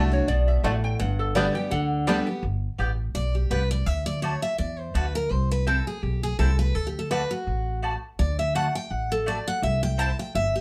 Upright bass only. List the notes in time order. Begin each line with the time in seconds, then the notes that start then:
Already playing: C2
0.28 B1
0.63 A1
1.00 G1
1.71 D2
2.43 G1
2.79 A1
3.15 B1
3.51 C2
3.86 D2
4.59 E2
4.95 D2
5.30 C2
6.03 B1
6.39 C2
6.75 D2
7.47 A1
8.19 D2
8.91 A1
9.62 C2
10.35 G1